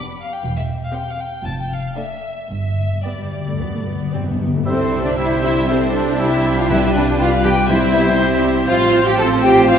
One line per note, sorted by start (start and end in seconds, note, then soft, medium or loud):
0.00 0.31 B3 soft
0.00 0.31 D4 soft
0.00 0.31 G4 medium
0.00 0.31 D5 medium
0.20 0.32 F5 medium
0.34 0.44 G5 medium
0.44 0.83 E1 medium
0.44 0.84 E2 medium
0.44 0.50 G5 medium
0.57 0.65 E5 medium
0.84 0.95 F5 medium
0.93 1.31 C4 soft
0.93 1.31 G4 soft
0.93 1.31 C5 soft
0.93 1.07 G5 medium
1.08 1.20 F5 medium
1.20 1.45 G5 medium
1.44 1.85 F1 medium
1.44 1.85 F2 medium
1.44 1.57 A5 medium
1.60 1.72 G5 medium
1.72 1.97 F5 medium
1.95 2.36 A3 soft
1.95 2.36 D4 soft
1.95 2.36 A4 soft
1.95 2.36 D5 soft
1.95 2.50 E5 medium
2.50 2.93 G1 medium
2.50 2.93 G2 medium
2.50 2.57 G2 soft
2.50 3.04 E5 medium
2.59 2.66 G2 soft
2.67 2.74 G2 soft
2.75 2.82 G2 soft
2.83 2.90 G2 soft
2.91 2.97 G2 soft
2.99 3.05 G2 soft
3.04 3.13 G2 soft
3.04 3.10 B3 medium
3.04 3.45 G4 soft
3.04 3.45 D5 soft
3.04 4.13 D5 soft
3.15 3.21 G2 soft
3.15 3.45 G3 soft
3.22 3.29 G2 soft
3.30 3.37 G2 soft
3.38 3.44 G2 soft
3.46 3.53 G2 soft
3.46 3.60 A3 soft
3.54 3.61 G2 soft
3.59 4.02 D2 medium
3.59 3.69 G2 soft
3.59 3.73 B3 medium
3.70 3.77 G2 soft
3.70 3.87 A3 soft
3.78 3.84 G2 soft
3.85 3.92 G2 medium
3.85 4.13 B3 medium
3.94 3.99 G2 medium
4.00 4.07 G2 soft
4.08 4.15 G2 medium
4.13 4.22 G2 medium
4.13 4.26 C4 medium
4.13 4.53 G4 soft
4.13 4.53 D5 soft
4.23 4.30 G2 medium
4.23 4.54 B3 soft
4.31 4.38 G2 medium
4.39 4.45 G2 medium
4.46 4.53 G2 medium
4.54 4.61 G2 medium
4.54 4.60 A3 soft
4.65 8.65 C2 medium
4.65 4.77 G3 medium
4.65 5.14 G3 medium
4.65 5.06 C4 medium
4.65 5.02 C4 medium
4.65 7.66 D4 medium
4.65 5.15 E4 medium
4.65 5.14 A4 medium
4.65 5.01 C5 medium
4.65 5.02 C5 medium
4.65 5.14 C5 medium
4.65 4.77 E5 medium
4.65 6.17 E5 medium
4.91 5.03 G3 soft
4.91 5.03 E5 medium
5.04 5.19 D4 medium
5.04 5.11 D4 medium
5.04 5.10 D5 medium
5.04 5.18 D5 medium
5.16 5.29 G3 medium
5.16 5.69 G3 medium
5.16 5.42 E4 medium
5.16 5.69 E4 medium
5.16 5.69 G4 medium
5.16 5.68 C5 medium
5.16 5.41 E5 medium
5.16 5.25 E5 medium
5.16 5.29 E5 medium
5.42 5.55 G3 soft
5.42 5.54 E4 medium
5.42 5.69 E4 medium
5.42 5.68 E5 medium
5.42 5.55 E5 medium
5.68 5.80 G3 medium
5.68 6.19 G3 medium
5.68 5.94 C4 medium
5.68 5.96 C4 medium
5.68 6.19 E4 medium
5.68 6.20 A4 medium
5.68 5.94 C5 medium
5.68 6.18 C5 medium
5.68 5.95 C5 medium
5.68 5.80 E5 medium
5.94 6.06 G3 medium
5.94 6.20 D4 medium
5.94 6.19 D4 medium
5.94 6.20 D5 medium
5.94 6.03 D5 medium
5.94 6.06 E5 medium
6.18 6.31 G3 medium
6.18 6.70 G3 medium
6.18 6.57 E4 medium
6.18 6.69 E4 medium
6.18 6.60 E4 medium
6.18 8.15 G4 medium
6.18 6.69 C5 medium
6.18 6.57 E5 medium
6.18 6.31 E5 medium
6.18 6.57 E5 medium
6.18 6.69 G5 medium
6.44 6.56 G3 medium
6.44 6.56 E5 medium
6.56 6.70 F4 medium
6.56 6.71 F4 medium
6.56 6.69 F5 medium
6.56 6.70 F5 medium
6.69 7.41 C3 medium
6.69 6.81 G3 medium
6.69 7.19 G3 medium
6.69 6.95 E4 medium
6.69 6.82 E4 medium
6.69 7.19 F4 medium
6.69 6.81 B4 medium
6.69 7.18 B4 medium
6.69 6.76 E5 medium
6.69 6.95 E5 medium
6.69 7.19 G5 medium
6.94 7.06 G3 medium
6.94 7.19 D4 medium
6.94 7.06 D4 medium
6.94 7.05 B4 medium
6.94 7.01 D5 medium
6.94 7.20 D5 medium
7.19 7.31 G3 medium
7.19 7.69 G3 medium
7.19 7.27 F4 medium
7.19 7.31 F4 medium
7.19 7.69 F4 medium
7.19 7.31 B4 medium
7.19 7.68 B4 medium
7.19 7.69 D5 medium
7.19 7.45 F5 medium
7.19 7.26 F5 medium
7.44 7.56 G3 medium
7.44 7.52 G4 medium
7.44 7.72 G4 medium
7.44 7.56 B4 medium
7.44 7.69 G5 medium
7.44 7.70 G5 medium
7.68 8.40 C3 medium
7.68 7.81 G3 medium
7.68 8.68 G3 medium
7.68 7.94 C4 medium
7.68 8.42 E4 medium
7.68 8.44 E4 medium
7.68 8.68 E4 medium
7.68 7.81 C5 medium
7.68 8.67 C5 medium
7.68 8.42 E5 medium
7.68 8.17 E5 medium
7.68 8.44 E5 medium
7.93 8.05 G3 medium
7.93 8.19 B3 medium
7.93 8.05 C5 medium
8.18 8.30 G3 medium
8.18 8.67 C4 medium
8.18 8.68 G4 medium
8.18 8.30 C5 medium
8.18 8.67 E5 medium
8.42 8.55 G3 medium
8.42 8.54 C5 medium
8.68 9.79 A1 medium
8.68 8.79 F3 medium
8.68 9.16 F3 medium
8.68 9.15 C4 medium
8.68 9.16 C4 medium
8.68 9.15 F4 medium
8.68 9.04 F4 medium
8.68 9.04 F4 loud
8.68 8.79 C5 medium
8.68 9.15 C5 medium
8.68 9.03 F5 medium
8.68 9.04 F5 loud
8.92 9.04 F3 medium
8.92 9.04 C5 medium
9.06 9.19 G4 medium
9.06 9.20 G4 loud
9.06 9.19 G5 medium
9.18 9.29 F3 medium
9.18 9.68 F3 medium
9.18 9.68 C4 medium
9.18 9.68 F4 medium
9.18 9.27 A4 loud
9.18 9.43 A4 medium
9.18 9.30 C5 medium
9.18 9.68 C5 medium
9.18 9.24 A5 medium
9.18 9.27 A5 medium
9.42 9.55 F3 medium
9.42 9.68 G4 medium
9.42 9.70 G4 loud
9.42 9.56 C5 medium
9.42 9.69 G5 loud
9.42 9.69 G5 medium
9.68 9.79 F3 medium
9.68 9.79 C4 medium
9.68 9.79 F4 medium
9.68 9.79 F4 loud
9.68 9.79 C5 medium
9.68 9.79 F5 loud
9.68 9.79 F5 medium